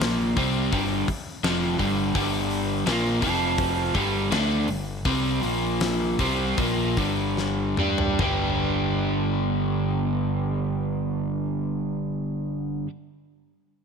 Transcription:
Already playing: A#1 A#2 F3 A#3
0.01 snare, open hi-hat
0.37 C2 C3 G3 C4, kick, open hi-hat
0.72 G1 G2 D3 G3, kick, open hi-hat
1.08 muted fingered electric bass stroke, muted overdriven electric guitar stroke, kick, open hi-hat
1.43 F1 F2 C3 F3, snare, open hi-hat
1.79 G1 G2 D3 G3, kick, open hi-hat
2.15 G1 G2 D3 G3, kick, open hi-hat
2.51 open hi-hat
2.86 A#1 A#2 F3 A#3, snare, open hi-hat
3.22 F1 F2 C3 F3, kick, open hi-hat
3.58 kick, open hi-hat
3.94 G1 G2 D3 G3, kick, open hi-hat
4.30 D2 D3 A3 D4, snare, open hi-hat
4.68 G1 G2 D3, open hi-hat
5.05 C2 C3 G3 C4, kick, open hi-hat
5.43 A#1 A#2 F3 A#3, open hi-hat
5.80 snare, open hi-hat
6.19 C2 C3 G3 C4, kick, open hi-hat
6.58 A#1 A#2 F3 A#3, kick, open hi-hat
6.97 G1 G2 D3 G3, kick, open hi-hat
7.37 snare
7.77 G2 G3 D4 G4, mid tom
7.98 floor tom
8.19 G1 G2 D3 G3 B3 D4, kick, floor tom
8.23 G4

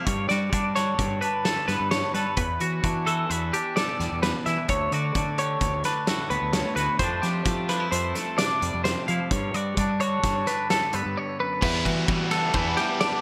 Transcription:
Already playing: G3
0.06 G2 C#5, kick, closed hi-hat
0.29 G3 F#4 D5, snare, closed hi-hat
0.53 G3 D4, kick, closed hi-hat
0.76 D3 F#4 C#5, snare, closed hi-hat
0.99 G2, kick, closed hi-hat
1.21 D4 B4, closed hi-hat
1.45 D3 A4, snare, closed hi-hat
1.68 G2 B3 B4, snare, closed hi-hat
1.80 G2
1.91 G2 C#5, snare, closed hi-hat
2.14 G3 A4 B4, snare, closed hi-hat
2.37 E2 B4, kick, closed hi-hat
2.60 E3 F#4, closed hi-hat
2.84 E3 D4, kick, closed hi-hat
3.06 E3 F#4 A4, closed hi-hat
3.30 E2 B4, closed hi-hat
3.53 D4 G4, closed hi-hat
3.76 B2 A4 D5, snare, closed hi-hat
4.00 E2 G3, snare, closed hi-hat
4.12 E2
4.23 E2 B4, snare, closed hi-hat
4.46 E3 E4 E5, snare, closed hi-hat
4.68 D2 C#5, kick, closed hi-hat
4.91 D3 F#4 D5, closed hi-hat
5.15 D3 D4, kick, closed hi-hat
5.38 D3 G4 C#5, closed hi-hat
5.61 D2, kick, closed hi-hat
5.84 D4 B4, snare, closed hi-hat
6.07 A2 F#4 A4, snare, closed hi-hat
6.30 D2 B3 B4, closed hi-hat
6.42 D2
6.53 D2 C#5, snare, closed hi-hat
6.76 D2 F#4 B4, snare, closed hi-hat
6.99 F2 F3 G3 A3 C5, kick, closed hi-hat
7.03 D4
7.22 F3 D4 G4, snare, closed hi-hat
7.45 F3 A3, kick, snare, closed hi-hat
7.69 F3 D4 B4, snare, closed hi-hat
7.80 E4
7.92 F2 C5, closed hi-hat
8.15 A3 A4, snare, closed hi-hat
8.37 C3 D4 D5, snare, closed hi-hat
8.62 F2 G3, closed hi-hat
8.74 F2
8.84 F2 C5, snare, closed hi-hat
9.08 F3 E4 F5, closed hi-hat
9.31 G2 C#5, kick, closed hi-hat
9.54 G3 F#4 D5, closed hi-hat
9.77 G3 D4, kick, closed hi-hat
10.00 D3 F#4 C#5, closed hi-hat
10.23 G2, kick, snare, closed hi-hat
10.47 D4 B4, snare, closed hi-hat
10.70 D3 A4, snare, closed hi-hat
10.93 G2 B3 B4, closed hi-hat
11.06 G2
11.17 G2 C#5
11.39 F#2 B4
11.61 E2 E3 G3 B3 E4 B4, kick, crash
11.85 E3 F#4, kick, ride
12.08 E3 G3, kick, ride
12.31 D4 A4, snare, ride
12.54 E2 E3 G3 B3 E4 B4, kick, ride
12.77 G3 G4, snare, ride
13.01 D4 D5, snare, ride

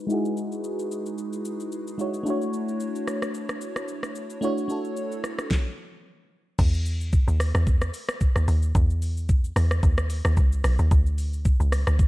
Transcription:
0.07 G#3 D#4 E4, shaker
0.12 F#4 G#4
0.25 shaker
0.37 shaker
0.52 shaker
0.64 shaker
0.79 shaker
0.91 shaker
1.06 shaker
1.18 shaker
1.33 shaker
1.45 shaker
1.60 shaker
1.72 shaker
1.87 shaker
1.98 G#3 D#4 E4 F#4 C#5, shaker
2.14 shaker
2.23 A3 D4 E4, shaker
2.28 F#4 C#5
2.42 shaker
2.53 shaker
2.68 shaker
2.80 shaker
2.96 shaker
3.08 cross-stick, shaker
3.22 cross-stick, shaker
3.34 shaker
3.49 cross-stick, shaker
3.61 shaker
3.76 cross-stick, shaker
3.88 shaker
4.03 cross-stick, shaker
4.15 shaker
4.30 shaker
4.41 A3 D4 E4 F#4 C#5, shaker
4.58 shaker
4.68 A3 D4 E4 F#4 A4, shaker
4.85 shaker
4.97 shaker
5.12 shaker
5.24 cross-stick, shaker
5.39 cross-stick, shaker
5.51 kick, snare
6.59 E2, kick, crash, shaker
6.74 shaker
6.86 open hi-hat, shaker
7.01 shaker
7.13 kick, shaker
7.28 D#2, shaker
7.40 cross-stick, open hi-hat, shaker
7.55 E2, cross-stick, shaker
7.67 kick, shaker
7.81 cross-stick, shaker
7.94 open hi-hat, shaker
8.09 cross-stick, shaker
8.21 kick, shaker
8.36 D#2, cross-stick, shaker
8.48 D#2, open hi-hat, shaker
8.62 shaker
8.75 E2, kick, shaker
8.90 shaker
9.02 open hi-hat, shaker
9.17 shaker
9.29 kick, shaker
9.44 shaker
9.56 E2, cross-stick, open hi-hat, shaker
9.71 cross-stick, shaker
9.83 D#2, kick, shaker
9.98 cross-stick, shaker
10.10 open hi-hat, shaker
10.25 D#2, cross-stick, shaker
10.37 C#2, kick, shaker
10.52 shaker
10.64 B1, cross-stick, open hi-hat, shaker
10.79 D#2, shaker
10.91 D2, kick, shaker
11.06 shaker
11.18 open hi-hat, shaker
11.33 shaker
11.45 kick, shaker
11.60 C#2, shaker
11.72 cross-stick, open hi-hat, shaker
11.87 D2, cross-stick, shaker
11.99 kick, shaker

